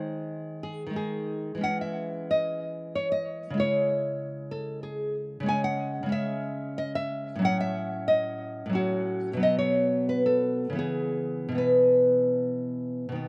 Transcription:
0.00 0.85 D#3 soft
0.00 0.86 G#3 soft
0.00 0.90 D#4 soft
0.00 0.59 C5 medium
0.63 0.95 G#4 medium
0.87 1.54 D#3 soft
0.87 1.56 G#3 soft
0.93 1.60 D#4 soft
0.93 1.61 G#4 medium
1.55 3.51 E3 soft
1.55 3.52 G#3 soft
1.61 3.53 C#4 soft
1.61 1.80 F#5 medium
1.81 2.29 E5 medium
2.31 2.93 D#5 medium
2.95 3.11 C#5 medium
3.12 3.58 D#5 medium
3.50 5.39 C#3 soft
3.50 5.42 G#3 soft
3.58 5.44 E4 soft
3.58 4.49 C#5 medium
4.51 4.82 A4 medium
4.83 5.14 G#4 medium
5.40 6.02 C#3 medium
5.40 6.05 G#3 soft
5.46 6.08 C#4 soft
5.46 5.64 G#5 medium
5.64 6.11 F#5 medium
6.03 7.35 C#3 medium
6.03 7.35 G#3 soft
6.09 7.38 C#4 soft
6.09 6.75 E5 medium
6.78 6.95 D#5 medium
6.95 7.42 E5 medium
7.35 8.65 A2 medium
7.35 8.68 F#3 soft
7.42 8.71 C#4 soft
7.42 7.60 F#5 medium
7.61 8.07 E5 medium
8.08 8.73 D#5 medium
8.66 9.36 A2 medium
8.66 9.33 F#3 soft
8.73 9.39 C#4 soft
8.73 9.40 F#4 medium
9.33 10.69 B2 medium
9.33 10.72 F#3 soft
9.40 10.74 B3 soft
9.40 9.58 D#5 medium
9.59 10.07 C#5 medium
10.09 10.26 B4 medium
10.26 10.78 A4 medium
10.70 11.48 C#3 soft
10.70 11.51 E3 soft
10.75 11.54 B3 soft
10.75 11.55 G#4 medium
11.49 13.08 B2 soft
11.49 13.11 E3 soft
11.55 13.13 B3 soft
11.55 13.14 B4 medium
13.09 13.28 B2 soft
13.09 13.28 D#3 soft
13.15 13.28 B3 soft

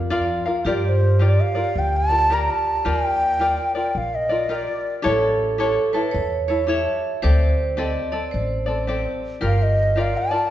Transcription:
0.00 0.38 F2 medium
0.00 0.10 F4 medium
0.00 0.41 F4 medium
0.00 0.10 A#4 medium
0.00 0.11 A#4 medium
0.00 0.11 F5 medium
0.10 0.45 F4 medium
0.10 0.45 A#4 medium
0.10 0.45 D5 medium
0.10 0.44 F5 medium
0.46 0.65 F4 soft
0.46 0.65 A#4 soft
0.46 0.65 F5 medium
0.65 1.36 G2 medium
0.65 1.20 F4 medium
0.65 2.91 G4 medium
0.65 1.19 G4 medium
0.65 1.20 A#4 medium
0.65 1.21 D5 medium
0.65 0.73 D5 medium
0.85 1.25 C5 medium
0.85 0.90 D5 medium
1.19 1.55 F4 medium
1.19 1.54 G4 medium
1.19 1.54 A#4 medium
1.19 1.53 D5 medium
1.24 1.44 D5 medium
1.42 1.80 F5 loud
1.55 2.11 F4 soft
1.55 2.10 A#4 soft
1.55 2.09 D5 medium
1.76 2.47 D2 medium
1.76 1.98 G5 medium
1.97 2.35 A5 loud
2.09 2.29 F4 soft
2.09 2.30 A#4 medium
2.09 2.29 D5 soft
2.30 2.84 F4 medium
2.30 2.84 G4 medium
2.30 2.85 A#4 medium
2.30 2.85 D5 medium
2.30 2.52 A#5 loud
2.50 2.90 A5 medium
2.85 3.57 D#2 medium
2.85 3.39 F4 medium
2.85 3.39 G4 medium
2.85 3.40 A#4 medium
2.85 5.11 A#4 medium
2.85 3.40 D5 medium
2.89 3.76 G5 loud
3.39 3.74 F4 medium
3.39 3.74 G4 medium
3.39 3.75 A#4 medium
3.39 3.74 D5 medium
3.75 4.30 F4 soft
3.75 4.30 A#4 soft
3.75 4.28 D5 medium
3.75 3.99 G5 medium
3.95 4.66 A#1 medium
3.95 4.16 F5 medium
4.15 4.52 D#5 medium
4.29 4.48 F4 soft
4.29 4.49 A#4 soft
4.29 4.49 D5 medium
4.49 5.02 F4 medium
4.49 5.02 G4 medium
4.49 5.03 A#4 medium
4.49 5.03 D5 medium
4.49 4.56 D#5 medium
4.55 4.95 D5 medium
5.02 5.76 A1 medium
5.02 5.58 E4 medium
5.02 5.58 G4 medium
5.02 5.58 A4 medium
5.02 5.59 A4 medium
5.02 5.59 C#5 medium
5.58 5.94 E4 medium
5.58 5.93 G4 medium
5.58 5.95 A4 medium
5.58 5.93 A4 medium
5.58 5.92 C#5 medium
5.93 6.49 E4 soft
5.93 6.49 A4 medium
5.93 6.14 B4 medium
5.93 6.47 C#5 medium
6.11 6.85 E2 medium
6.11 6.47 C#5 medium
6.48 6.66 E4 medium
6.48 6.67 A4 medium
6.48 6.68 C#5 medium
6.48 6.67 C#5 medium
6.67 7.23 E4 medium
6.67 7.22 G4 medium
6.67 7.23 A4 medium
6.67 7.22 C#5 medium
6.67 7.25 E5 loud
7.22 7.95 D2 medium
7.22 7.77 C4 medium
7.22 7.76 G4 medium
7.22 7.77 A4 medium
7.22 7.79 C5 loud
7.22 7.78 D5 medium
7.77 8.12 C4 medium
7.77 8.12 G4 medium
7.77 8.12 A4 medium
7.77 8.11 D5 medium
7.77 8.14 D#5 medium
8.12 8.67 C4 soft
8.12 8.66 A4 medium
8.12 8.66 D5 medium
8.12 8.33 D5 medium
8.31 9.05 A1 medium
8.31 9.18 C5 medium
8.66 8.87 C4 soft
8.66 8.87 A4 soft
8.66 8.87 D5 medium
8.87 9.41 C4 medium
8.87 9.40 G4 medium
8.87 9.41 A4 medium
8.87 9.97 D5 medium
9.41 10.13 G1 medium
9.41 9.96 F4 medium
9.41 9.95 G4 medium
9.41 10.50 A#4 medium
9.41 9.97 A#4 medium
9.46 9.64 F5 medium
9.63 10.02 D#5 medium
9.96 10.32 F4 medium
9.96 10.31 G4 medium
9.96 10.31 A#4 medium
9.96 10.30 D5 medium
10.01 10.19 F5 medium
10.18 10.50 A5 medium
10.31 10.50 F4 soft
10.31 10.50 A#4 soft
10.31 10.50 D5 medium

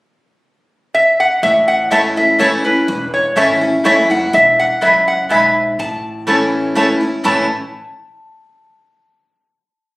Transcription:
0.94 1.20 E5 medium
1.20 1.41 F#5 medium
1.43 2.48 A1 loud
1.43 2.35 A2 medium
1.43 1.69 E5 medium
1.68 1.91 F#5 medium
1.91 2.15 E3 medium
1.91 2.00 A3 medium
1.91 2.16 A3 medium
1.91 2.16 C#4 medium
1.91 2.00 E4 medium
1.91 2.15 E4 loud
1.91 2.01 C#5 loud
1.91 1.98 E5 medium
1.91 2.01 A5 loud
2.16 2.39 C#4 soft
2.16 2.39 E4 medium
2.16 2.38 E5 medium
2.39 2.64 E3 medium
2.39 2.48 A3 medium
2.39 2.64 A3 medium
2.39 2.64 C#4 medium
2.39 2.49 E4 loud
2.39 2.63 E4 loud
2.39 2.64 C#5 medium
2.39 2.49 C#5 medium
2.39 2.49 A5 loud
2.64 2.88 C#4 medium
2.64 2.87 E4 medium
2.64 3.10 B4 medium
2.88 3.24 E1 medium
2.88 3.81 E2 medium
3.14 3.37 C#5 medium
3.36 3.78 G#1 medium
3.36 3.61 E3 medium
3.36 3.46 A3 medium
3.36 3.61 A3 medium
3.36 3.61 C#4 medium
3.36 3.46 E4 loud
3.36 3.60 E4 medium
3.36 3.46 C#5 loud
3.36 3.84 E5 medium
3.36 3.46 A5 medium
3.61 3.85 C#4 medium
3.61 3.84 E4 medium
3.84 4.27 F#1 medium
3.84 4.09 E3 medium
3.84 3.94 A3 medium
3.84 4.09 A3 medium
3.84 4.10 C#4 medium
3.84 3.94 E4 medium
3.84 4.09 E4 loud
3.84 3.94 C#5 medium
3.84 4.09 E5 medium
3.84 3.95 A5 medium
4.10 4.33 C#4 soft
4.10 4.32 E4 medium
4.10 4.32 F#5 loud
4.33 4.69 E1 loud
4.33 4.82 E2 medium
4.33 4.60 E5 loud
4.59 4.81 F#5 loud
4.81 5.23 C#2 medium
4.81 5.28 F#2 medium
4.81 4.91 B3 medium
4.81 4.91 E4 loud
4.81 4.91 B4 medium
4.81 5.08 E5 medium
4.81 4.92 G#5 medium
5.08 5.31 F#5 medium
5.29 5.72 B1 medium
5.29 5.77 G#2 medium
5.29 5.39 B3 medium
5.29 5.40 E4 medium
5.29 5.40 B4 medium
5.29 5.76 E5 loud
5.29 5.40 G#5 loud
5.79 6.85 A1 loud
5.79 6.72 A2 medium
5.79 6.72 A5 loud
6.27 6.73 E3 medium
6.27 6.37 A3 medium
6.27 6.74 A3 medium
6.27 6.74 C#4 medium
6.27 6.37 E4 medium
6.27 6.74 E4 medium
6.27 6.37 C#5 loud
6.27 6.37 A5 medium
6.75 7.00 E3 medium
6.75 6.85 A3 medium
6.75 7.00 A3 medium
6.75 7.01 C#4 medium
6.75 6.85 E4 medium
6.75 6.99 E4 medium
6.75 6.86 C#5 medium
6.75 6.86 A5 medium
7.01 7.24 C#4 soft
7.01 7.23 E4 medium
7.24 7.48 A1 loud
7.24 7.45 A2 medium
7.24 7.45 E3 medium
7.24 7.44 A3 medium
7.24 7.45 A3 loud
7.24 7.45 C#4 medium
7.24 7.45 E4 medium
7.24 7.45 C#5 medium
7.24 7.48 A5 medium
7.24 7.46 A5 loud

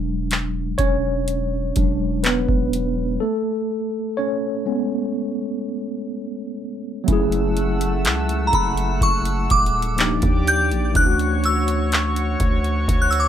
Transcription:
0.00 0.75 E1 loud
0.00 1.76 F#3 medium
0.00 1.76 G#3 soft
0.00 1.76 D4 medium
0.31 clap loud
0.31 closed hi-hat medium
0.78 1.72 E1 loud
0.78 2.21 C#4 medium
0.78 2.28 C#5 loud
0.78 kick medium
0.78 closed hi-hat medium
1.28 closed hi-hat medium
1.76 2.46 E1 loud
1.76 2.20 F#3 soft
1.76 2.20 G#3 soft
1.76 2.21 D4 medium
1.76 kick medium
1.76 closed hi-hat medium
2.23 3.18 B3 medium
2.23 3.24 B4 medium
2.23 clap loud
2.23 closed hi-hat medium
2.49 3.18 E1 medium
2.49 kick medium
2.73 closed hi-hat medium
3.20 4.14 A3 medium
3.20 4.13 A4 medium
4.17 4.66 C#4 medium
4.17 6.55 C#5 medium
4.66 7.04 G#3 medium
4.66 7.04 B3 soft
4.66 7.04 C#4 medium
7.04 9.92 F#3 medium
7.04 9.93 A3 medium
7.04 closed hi-hat medium
7.08 8.06 F#1 loud
7.08 9.96 A3 medium
7.08 9.95 C#4 medium
7.08 9.96 E4 medium
7.08 9.96 F#5 medium
7.08 9.96 E6 medium
7.08 kick loud
7.13 9.97 G#4 medium
7.32 closed hi-hat soft
7.57 closed hi-hat medium
7.81 closed hi-hat medium
8.05 8.51 C#2 loud
8.05 clap loud
8.05 closed hi-hat medium
8.29 closed hi-hat medium
8.47 8.54 A#5 medium
8.53 9.00 F#1 loud
8.53 8.99 B5 medium
8.53 kick medium
8.53 closed hi-hat medium
8.77 closed hi-hat soft
9.01 9.48 F#1 loud
9.01 9.47 C#6 medium
9.01 kick loud
9.01 closed hi-hat medium
9.25 closed hi-hat medium
9.50 10.20 D#1 loud
9.50 10.43 D6 loud
9.50 kick medium
9.50 closed hi-hat medium
9.66 closed hi-hat medium
9.82 closed hi-hat medium
9.96 10.94 F3 medium
9.96 10.95 A#3 medium
9.96 10.95 D4 medium
9.96 10.96 D#4 medium
9.96 10.94 G4 medium
9.96 10.94 D5 medium
9.96 10.94 D6 medium
9.96 clap loud
9.96 closed hi-hat medium
10.01 10.96 G4 medium
10.22 10.73 D#2 loud
10.22 kick loud
10.22 closed hi-hat medium
10.47 10.62 G6 loud
10.47 closed hi-hat medium
10.71 10.94 A#1 loud
10.71 closed hi-hat medium
10.91 13.28 E3 medium
10.91 13.28 A3 medium
10.95 12.36 D2 loud
10.95 13.28 C#4 medium
10.95 13.28 D4 medium
10.95 13.28 F#4 medium
10.95 13.28 C#5 medium
10.95 13.28 C#6 medium
10.95 11.41 F#6 loud
10.95 kick loud
10.95 closed hi-hat medium
11.00 11.04 E4 medium
11.06 13.28 F#4 medium
11.19 closed hi-hat soft
11.44 12.98 E6 medium
11.44 closed hi-hat medium
11.68 closed hi-hat medium
11.92 clap loud
11.92 closed hi-hat medium
12.16 closed hi-hat medium
12.40 12.87 D2 loud
12.40 kick medium
12.40 closed hi-hat medium
12.64 closed hi-hat soft
12.88 13.28 D2 loud
12.88 kick medium
12.88 closed hi-hat medium
13.02 13.10 F#6 medium
13.11 13.19 E6 medium
13.11 closed hi-hat medium
13.20 13.28 D6 medium

